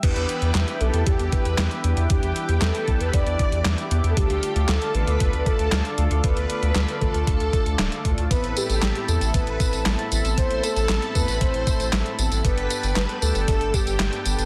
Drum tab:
CC |x---------------|----------------|----------------|----------------|
HH |xxxxxxxxxxxxxxxx|xxxxxxxxxxxxxxxx|xxxxxxxxxxxxxxxx|xxxxxxxxxxxxxxxx|
TB |----------------|----------------|----------------|----------------|
CP |----x-------x---|----x-------x---|----x-------x---|----x-------x---|
SD |----o-------o---|----o-------o---|----o-------o---|----o-------o---|
BD |o-------o-o-----|o-----o-o-o-----|o-------o-o-----|o-----o-o-o---o-|

CC |----------------|----------------|----------------|
HH |xxxxxxxxxxxxxxxx|xxxxxxxxxxxxxxxx|xxxxxxxxxxxxxxxx|
TB |x-xxx-xxx-xxx-xx|x-xxx-xxx-xxx-xx|x-xxx-xxx-xxx-xx|
CP |----x-------x---|----x-------x---|----x-------x---|
SD |----o-------o---|----o-------o---|----o-------o---|
BD |o-------o-o-----|o-----o-o-o-----|o-------o-o-----|